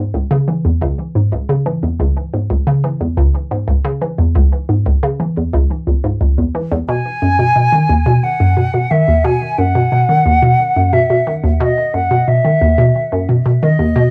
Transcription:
Already playing: G#2
0.14 C#2
0.31 C#3
0.48 E3
0.65 E2
0.82 C#2
1.15 G#2
1.32 C#2
1.49 C#3
1.66 E3
1.83 E2
2.00 C#2
2.34 G#2
2.50 C#2
2.67 C#3
2.84 E3
3.00 E2
3.17 C#2
3.51 G#2
3.68 C#2
3.85 C#3
4.01 E3
4.18 E2
4.36 C#2
4.69 G#2
4.86 C#2
5.03 C#3
5.20 E3
5.37 E2
5.53 C#2
5.87 C#2
6.04 G#2
6.21 C#2
6.38 E2
6.55 E3
6.71 E2
6.88 B2 G#5
7.22 F#2
7.39 B2
7.56 B2
7.72 D#3
7.89 D#2
8.06 B2
8.24 F#5
8.40 F#2
8.57 B2
8.74 B2
8.91 D#3 E5
9.08 D#2
9.24 B2 G#5
9.58 F#2 F#5
9.75 B2
9.92 B2
10.09 D#3
10.26 D#2
10.42 B2
10.76 F#2
10.93 B2 E5
11.10 B2
11.27 D#3
11.44 D#2
11.60 B2 D#5
11.94 F#2 F#5
12.11 B2
12.28 B2 E5
12.45 D#3
12.61 D#2
12.78 B2
13.12 F#2
13.29 B2
13.46 B2
13.62 D#3 D#5
13.79 D#2
13.96 B2

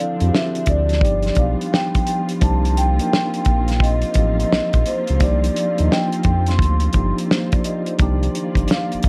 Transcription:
Already playing: D3 F3 C4 D4 E4 A4
0.00 F5
0.18 F2 F3 C4 D4 E4 F#4, closed hi-hat
0.28 G4
0.35 E5, snare
0.55 closed hi-hat
0.66 D2 D5, kick, closed hi-hat
0.89 snare, closed hi-hat
1.01 G1 F3 G3 B3 D4 D#4 F4 G4, kick
1.05 closed hi-hat
1.23 snare, closed hi-hat
1.35 B1 F3 B3 D4 D#4 F5, kick, closed hi-hat
1.40 G4
1.61 closed hi-hat
1.73 G5, snare
1.95 kick, closed hi-hat
2.07 closed hi-hat
2.29 closed hi-hat
2.41 C2 F3 A#3 C4 D4 D#4 G4 A5, kick, closed hi-hat
2.65 closed hi-hat
2.77 G5, closed hi-hat
2.98 F3 A#3 D4 D#4 A#4, closed hi-hat
3.13 snare
3.34 closed hi-hat
3.45 A#1, kick, closed hi-hat
3.68 snare, closed hi-hat
3.80 D#5, kick, closed hi-hat
4.02 closed hi-hat
4.14 A1 F3 A#3 C4 D#4, kick, closed hi-hat
4.18 G4
4.39 D#5, closed hi-hat
4.53 A#1, snare
4.73 A#1, kick, closed hi-hat
4.86 C5, closed hi-hat
5.07 C#2, closed hi-hat
5.19 C2 F3 A#3 D4 D#4 D5, kick, closed hi-hat
5.23 G4
5.44 closed hi-hat
5.56 closed hi-hat
5.77 D#2 F3 A#3 D4 D#4 F4 D#5, closed hi-hat
5.91 G5, snare
6.12 closed hi-hat
6.23 F2, kick, closed hi-hat
6.46 C6, snare, closed hi-hat
6.59 D2, kick, closed hi-hat
6.80 closed hi-hat
6.93 G1 F3 A#3 D4 D#4, kick, closed hi-hat
6.97 G4
7.18 closed hi-hat
7.31 D#4 C5, snare
7.52 F4 D5, kick, closed hi-hat
7.64 G4 D#5, closed hi-hat
7.86 D#4 C5, closed hi-hat
7.98 C2 D#3 F3 A#3 D4 D#4 F4 D5, kick, closed hi-hat
8.02 G4
8.23 closed hi-hat
8.35 closed hi-hat
8.55 G1, kick, closed hi-hat
8.68 F5, snare, closed hi-hat
8.92 G1, closed hi-hat
9.03 G1, kick, closed hi-hat

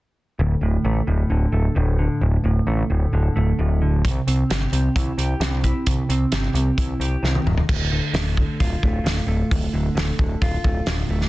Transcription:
0.39 D1 D2
0.61 D1 A2
0.85 A1 A3
1.07 D1 A2
1.30 D1 D3
1.52 D1 A3
1.75 D1 A2
1.99 D3
2.21 D1 D2
2.44 D1 A2
2.67 A1 A3
2.90 D1 A2
3.13 D1 D3
3.36 D1 A3
3.59 D1 A2
3.82 D3
4.05 C2, kick, closed hi-hat
4.27 C2 C4, closed hi-hat
4.50 G1 G4, snare, closed hi-hat
4.72 C2 C4, closed hi-hat
4.96 C2 E4, kick, closed hi-hat
5.17 C2 G4, closed hi-hat
5.40 C2 C4, snare, closed hi-hat
5.64 E4, kick, closed hi-hat
5.86 C2 C3, kick, closed hi-hat
6.09 C2 C4, closed hi-hat
6.32 G1 G4, snare, closed hi-hat
6.54 C2 C4, closed hi-hat
6.77 C2 E4, kick, closed hi-hat
7.00 C2 G4, closed hi-hat
7.23 C2 C4, snare
7.35 high tom
7.45 D1 D2, mid tom
7.58 floor tom
7.69 D1 D2, kick, crash
7.92 D3
8.13 D1 A3, snare, open hi-hat
8.37 D3, kick
8.60 D1 F4, kick, open hi-hat
8.83 D1 A3, kick
9.04 D1 A2, snare, open hi-hat
9.27 D1 A3
9.50 D1 D2, kick, open hi-hat
9.73 D1 D3
9.95 D1 A3, snare, open hi-hat
10.18 D1 D3, kick
10.41 D1 F4, kick, open hi-hat
10.64 D1 A3, kick
10.86 D1 A2, snare, open hi-hat
11.09 D1 A3
11.21 snare

